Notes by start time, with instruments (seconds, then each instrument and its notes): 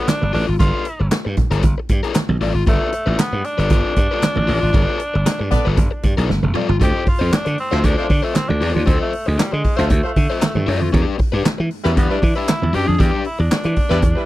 0.08 tenor saxophone D4, muted overdriven electric guitar stroke, snare, clap, closed hi-hat, high conga
0.21 slap bass G1, muted overdriven electric guitar stroke, high conga
0.33 slap bass A1, tenor saxophone D4, overdriven electric guitar F4 A4 B4, open hi-hat
0.48 slap bass G#1, muted overdriven electric guitar stroke
0.59 slap bass G1, overdriven electric guitar F4 A4 B4, tenor saxophone F4, kick, closed hi-hat, muted conga
0.85 closed hi-hat
1.00 slap bass G1, muted overdriven electric guitar stroke
1.11 muted overdriven electric guitar stroke, snare, clap, closed hi-hat, high conga
1.25 slap bass G2, muted overdriven electric guitar stroke
1.37 kick, closed hi-hat, low conga
1.51 slap bass G1, overdriven electric guitar F4 A4 B4, closed hi-hat
1.63 slap bass G1, muted overdriven electric guitar stroke, kick, closed hi-hat, muted conga
1.78 muted overdriven electric guitar stroke
1.89 slap bass G2, kick, closed hi-hat
2.03 overdriven electric guitar F4 A4 B4, closed hi-hat
2.14 muted overdriven electric guitar stroke, snare, clap, closed hi-hat, high conga
2.29 slap bass B1, muted overdriven electric guitar stroke, high conga
2.40 slap bass A1, overdriven electric guitar F4 A4 D5, open hi-hat
2.54 slap bass G#1, muted overdriven electric guitar stroke
2.67 slap bass G1, tenor saxophone A3, overdriven electric guitar F4 A4 B4, kick, closed hi-hat, muted conga
2.92 muted overdriven electric guitar stroke, closed hi-hat
3.06 slap bass A1, overdriven electric guitar F4 A4 B4
3.18 tenor saxophone B3, muted overdriven electric guitar stroke, snare, clap, closed hi-hat, high conga
3.33 slap bass G2, muted overdriven electric guitar stroke
3.44 tenor saxophone D4, closed hi-hat
3.58 slap bass G1, overdriven electric guitar F4 A4 B4, closed hi-hat
3.70 slap bass G1, overdriven electric guitar F4 A4 B4, kick, closed hi-hat, muted conga
3.96 slap bass G2, muted overdriven electric guitar stroke, kick, closed hi-hat
4.11 overdriven electric guitar F4 A4 B4
4.22 muted overdriven electric guitar stroke, snare, clap, closed hi-hat, high conga
4.36 slap bass A1, muted overdriven electric guitar stroke, high conga
4.47 slap bass A1, overdriven electric guitar F4 A4 B4, open hi-hat
4.61 slap bass G#1, muted overdriven electric guitar stroke
4.73 slap bass G1, overdriven electric guitar F4 A4 B4, kick, closed hi-hat, muted conga
5.00 closed hi-hat
5.14 slap bass G1, muted overdriven electric guitar stroke
5.26 muted overdriven electric guitar stroke, snare, clap, closed hi-hat, high conga
5.40 slap bass G2, muted overdriven electric guitar stroke
5.51 horn section B3 A4 D5, kick, closed hi-hat, low conga
5.65 slap bass G1, overdriven electric guitar F4 A4 B4
5.77 slap bass G1, muted overdriven electric guitar stroke, kick, closed hi-hat, muted conga
5.91 muted overdriven electric guitar stroke
6.03 slap bass G2, kick, closed hi-hat, muted conga
6.17 slap bass B1, overdriven electric guitar F4 A4 B4, closed hi-hat
6.29 slap bass G1, muted overdriven electric guitar stroke, snare, high conga
6.43 slap bass F1, muted overdriven electric guitar stroke, high conga
6.54 overdriven electric guitar F4 A4 D5, mid tom
6.69 slap bass G1, muted overdriven electric guitar stroke, floor tom
6.80 slap bass D2, overdriven electric guitar F4 A4 C5, tenor saxophone G4, kick, closed hi-hat, muted conga
7.06 tenor saxophone F4, muted overdriven electric guitar stroke, kick, open hi-hat
7.19 slap bass F2, overdriven electric guitar F4 A4 C5
7.32 tenor saxophone D4, muted overdriven electric guitar stroke, muted slap bass stroke, snare, clap, closed hi-hat, high conga
7.45 slap bass D3, muted overdriven electric guitar stroke, closed hi-hat
7.58 tenor saxophone C4, open hi-hat
7.71 slap bass D2, horn section A3 F4 C5, overdriven electric guitar F4 A4 C5, closed hi-hat
7.84 slap bass D2, tenor saxophone D4, overdriven electric guitar F4 A4 C5, kick, closed hi-hat, muted conga
7.98 horn section A3 F4 C5, tenor saxophone D4
8.09 slap bass D3, muted overdriven electric guitar stroke, kick, open hi-hat
8.22 tenor saxophone A3, overdriven electric guitar F4 A4 C5
8.34 tenor saxophone C4, muted overdriven electric guitar stroke, snare, clap, closed hi-hat, high conga
8.49 slap bass D2, tenor saxophone D4, muted overdriven electric guitar stroke, high conga
8.61 slap bass E2, overdriven electric guitar F4 A4 C5, open hi-hat
8.74 slap bass D#2, tenor saxophone D4, muted overdriven electric guitar stroke, high conga
8.86 slap bass D2, tenor saxophone C4, overdriven electric guitar F4 A4 C5, kick, closed hi-hat, muted conga
9.01 tenor saxophone A3
9.13 open hi-hat
9.26 slap bass D2, tenor saxophone G#3, muted overdriven electric guitar stroke
9.38 tenor saxophone G3, muted overdriven electric guitar stroke, snare, clap, closed hi-hat, high conga
9.52 slap bass D3, tenor saxophone G#3, muted overdriven electric guitar stroke
9.64 kick, open hi-hat
9.77 slap bass D2, tenor saxophone A3, horn section A3 F4 C5, overdriven electric guitar F4 A4 C5, closed hi-hat
9.89 slap bass D2, muted overdriven electric guitar stroke, kick, closed hi-hat, muted conga
10.03 horn section A3 F4 C5, muted overdriven electric guitar stroke
10.16 slap bass D3, kick, open hi-hat, muted conga
10.30 overdriven electric guitar F4 A4 C5
10.41 muted overdriven electric guitar stroke, snare, clap, closed hi-hat, high conga
10.55 slap bass G2, muted overdriven electric guitar stroke, high conga
10.67 slap bass F#2, overdriven electric guitar F4 A4 D5, open hi-hat
10.81 slap bass F2, muted overdriven electric guitar stroke, high conga
10.93 slap bass E2, overdriven electric guitar D4 G4 B4, kick, closed hi-hat, muted conga
11.18 muted overdriven electric guitar stroke, kick, open hi-hat
11.32 slap bass G2, overdriven electric guitar D4 G4 B4
11.45 muted overdriven electric guitar stroke, muted slap bass stroke, snare, clap, closed hi-hat, high conga
11.58 slap bass E3, muted overdriven electric guitar stroke
11.71 open hi-hat
11.84 slap bass E2, horn section G3 E4 B4, overdriven electric guitar D4 G4 B4, closed hi-hat
11.97 slap bass E2, tenor saxophone B3, overdriven electric guitar D4 G4 B4, kick, closed hi-hat, muted conga
12.10 horn section G3 E4 B4, tenor saxophone D4
12.22 slap bass E3, muted overdriven electric guitar stroke, kick, open hi-hat, muted conga
12.36 overdriven electric guitar D4 G4 B4, tenor saxophone E4
12.48 muted overdriven electric guitar stroke, snare, clap, closed hi-hat, high conga
12.62 slap bass E2, muted overdriven electric guitar stroke, high conga
12.73 slap bass F#2, overdriven electric guitar D4 G4 B4, tenor saxophone G4, open hi-hat
12.87 slap bass F2, tenor saxophone G#4, muted overdriven electric guitar stroke, high conga
12.99 slap bass E2, overdriven electric guitar D4 G4 B4, tenor saxophone G4, kick, closed hi-hat, muted conga
13.24 tenor saxophone E4, open hi-hat
13.39 slap bass E2, tenor saxophone D4, muted overdriven electric guitar stroke
13.51 muted overdriven electric guitar stroke, muted slap bass stroke, snare, clap, closed hi-hat, high conga
13.63 slap bass E3, muted overdriven electric guitar stroke, closed hi-hat
13.76 kick, open hi-hat
13.90 slap bass E2, horn section G3 E4 B4, overdriven electric guitar D4 G4 B4, closed hi-hat
14.02 slap bass E2, muted overdriven electric guitar stroke, kick, closed hi-hat, muted conga
14.16 horn section G3 E4 B4, muted overdriven electric guitar stroke